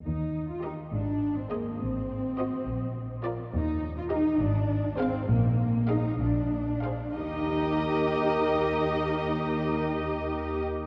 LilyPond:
<<
  \new Staff \with { instrumentName = "Violin section" } { \time 6/8 \key ees \major \tempo 4. = 67 r4 ees''8 r4 ees''8 | r4 ees''8 r4 d''8 | r4 ees''8 r4 f''8 | r4 f''8 r4 f''8 |
ees''2.~ | ees''2. | }
  \new Staff \with { instrumentName = "Violin section" } { \time 6/8 \key ees \major r4 bes'8 r4 c''8 | r4 c''8 r4 bes'8 | r4 bes'8 r4 c''8 | r4 ees''8 r4 c''8 |
bes'2.~ | bes'2. | }
  \new Staff \with { instrumentName = "Viola section" } { \time 6/8 \key ees \major r4 g'8 r4 aes'8 | r4 fis'8 r4 f'8 | r4 g'8 r4 aes'8 | r4 aes'8 r4 aes'8 |
g'2.~ | g'2. | }
  \new Staff \with { instrumentName = "Cello section" } { \time 6/8 \key ees \major ees'8. f'16 ees'8 d'8. c'16 bes8 | c'2~ c'8 r8 | ees'8. f'16 ees'8 d'4 c'8 | bes4 ees'8 d'4. |
ees'2.~ | ees'2. | }
  \new Staff \with { instrumentName = "Double bass section" } { \clef bass \time 6/8 \key ees \major ees,4. aes,,4. | a,,4. bes,,4. | ees,4. aes,,4. | bes,,4. bes,,4. |
ees,2.~ | ees,2. | }
>>